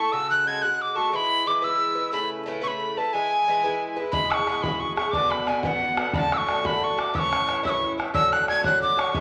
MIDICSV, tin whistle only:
0, 0, Header, 1, 2, 480
1, 0, Start_track
1, 0, Tempo, 334262
1, 165, Time_signature, 6, 3, 24, 8
1, 13214, End_track
2, 0, Start_track
2, 0, Title_t, "Tin whistle"
2, 0, Program_c, 0, 75
2, 0, Note_on_c, 0, 85, 91
2, 176, Note_on_c, 0, 88, 113
2, 197, Note_off_c, 0, 85, 0
2, 430, Note_off_c, 0, 88, 0
2, 438, Note_on_c, 0, 90, 80
2, 682, Note_on_c, 0, 92, 85
2, 704, Note_off_c, 0, 90, 0
2, 892, Note_on_c, 0, 90, 86
2, 913, Note_off_c, 0, 92, 0
2, 1173, Note_on_c, 0, 86, 81
2, 1194, Note_off_c, 0, 90, 0
2, 1379, Note_on_c, 0, 85, 86
2, 1401, Note_off_c, 0, 86, 0
2, 1607, Note_off_c, 0, 85, 0
2, 1607, Note_on_c, 0, 85, 103
2, 1659, Note_on_c, 0, 83, 112
2, 1673, Note_off_c, 0, 85, 0
2, 2116, Note_on_c, 0, 86, 83
2, 2137, Note_off_c, 0, 83, 0
2, 2354, Note_on_c, 0, 88, 94
2, 2375, Note_off_c, 0, 86, 0
2, 3043, Note_off_c, 0, 88, 0
2, 3051, Note_on_c, 0, 83, 86
2, 3291, Note_off_c, 0, 83, 0
2, 3781, Note_on_c, 0, 85, 77
2, 3845, Note_on_c, 0, 83, 83
2, 3859, Note_off_c, 0, 85, 0
2, 4270, Note_on_c, 0, 81, 85
2, 4292, Note_off_c, 0, 83, 0
2, 4495, Note_on_c, 0, 80, 104
2, 4516, Note_off_c, 0, 81, 0
2, 5703, Note_off_c, 0, 80, 0
2, 5912, Note_on_c, 0, 83, 103
2, 6181, Note_on_c, 0, 88, 76
2, 6202, Note_off_c, 0, 83, 0
2, 6228, Note_on_c, 0, 85, 83
2, 6243, Note_off_c, 0, 88, 0
2, 6639, Note_on_c, 0, 83, 75
2, 6661, Note_off_c, 0, 85, 0
2, 6888, Note_on_c, 0, 85, 68
2, 6910, Note_off_c, 0, 83, 0
2, 7118, Note_off_c, 0, 85, 0
2, 7126, Note_on_c, 0, 85, 78
2, 7341, Note_on_c, 0, 86, 93
2, 7363, Note_off_c, 0, 85, 0
2, 7617, Note_on_c, 0, 83, 74
2, 7638, Note_off_c, 0, 86, 0
2, 7868, Note_on_c, 0, 80, 68
2, 7889, Note_off_c, 0, 83, 0
2, 8079, Note_off_c, 0, 80, 0
2, 8087, Note_on_c, 0, 80, 83
2, 8140, Note_on_c, 0, 78, 90
2, 8154, Note_off_c, 0, 80, 0
2, 8819, Note_on_c, 0, 83, 104
2, 8841, Note_off_c, 0, 78, 0
2, 8874, Note_on_c, 0, 81, 113
2, 8889, Note_off_c, 0, 83, 0
2, 9093, Note_on_c, 0, 88, 86
2, 9114, Note_off_c, 0, 81, 0
2, 9155, Note_on_c, 0, 85, 93
2, 9169, Note_off_c, 0, 88, 0
2, 9563, Note_on_c, 0, 83, 81
2, 9585, Note_off_c, 0, 85, 0
2, 9819, Note_on_c, 0, 85, 71
2, 9841, Note_off_c, 0, 83, 0
2, 10052, Note_on_c, 0, 86, 87
2, 10074, Note_off_c, 0, 85, 0
2, 10273, Note_on_c, 0, 88, 106
2, 10295, Note_off_c, 0, 86, 0
2, 10320, Note_on_c, 0, 85, 115
2, 10334, Note_off_c, 0, 88, 0
2, 10980, Note_off_c, 0, 85, 0
2, 10994, Note_on_c, 0, 88, 75
2, 11052, Note_on_c, 0, 85, 82
2, 11066, Note_off_c, 0, 88, 0
2, 11380, Note_off_c, 0, 85, 0
2, 11695, Note_on_c, 0, 88, 121
2, 11953, Note_on_c, 0, 90, 97
2, 11975, Note_off_c, 0, 88, 0
2, 12179, Note_off_c, 0, 90, 0
2, 12191, Note_on_c, 0, 92, 85
2, 12397, Note_off_c, 0, 92, 0
2, 12426, Note_on_c, 0, 90, 77
2, 12657, Note_off_c, 0, 90, 0
2, 12664, Note_on_c, 0, 86, 81
2, 12925, Note_on_c, 0, 85, 91
2, 12946, Note_off_c, 0, 86, 0
2, 13143, Note_off_c, 0, 85, 0
2, 13143, Note_on_c, 0, 85, 109
2, 13214, Note_off_c, 0, 85, 0
2, 13214, End_track
0, 0, End_of_file